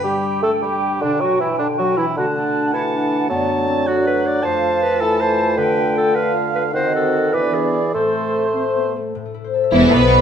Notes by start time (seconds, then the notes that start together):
Already playing: G2 D4 G5
0.03 G3 B3 G4
0.24 D4
0.42 A3 A4
0.62 G3 D4 G4
0.83 B3
1.01 B2 D3 D4
1.20 F#3 B3 F#4
1.40 E3 E4
1.58 D3 D4 G4
1.78 F#3 D4 F#4
1.97 E3 B3 E4
2.16 D3 A3 F#4 F#5 A5
2.36 D4
2.55 F#4
2.72 E3 E4 A4 F#5 A5
2.92 D4 F#4
3.12 D4
3.29 F#2 F#3 B3 D4 D5 A5
3.49 A3
3.67 C4 D4
3.86 F#4 A4 F#5
4.05 D4 B4
4.24 A3 D5
4.43 F2 F3 A3 F4 C5 F5 A5
4.62 A3
4.81 F4 B4
5.00 E3 A4 A5
5.19 F4 C5
5.38 A3
5.57 D3 B4 G5
5.76 B3
5.96 F4 A4
6.15 A4 B4 F5
6.34 F4
6.54 B3 B4
6.73 D#3 C4 F#4 C5 D#5 F#5
6.93 C4 A4
7.12 F#4 A4
7.32 E3 B3 D4 B4 D5
7.54 E4 G#4
7.74 E4 D5
7.93 A2 A3 C4 A4 C5
8.15 A3
8.35 E4
8.54 C4 C5
8.75 B3 E4
8.96 A3
9.15 A2
9.25 A3
9.34 E4
9.44 C5
9.54 A4
9.64 E5
9.72 E1 E2 E3 E4 E5
9.82 A4
9.91 B1 B2 B3 B4 C5 B5
10.01 E4
10.11 A3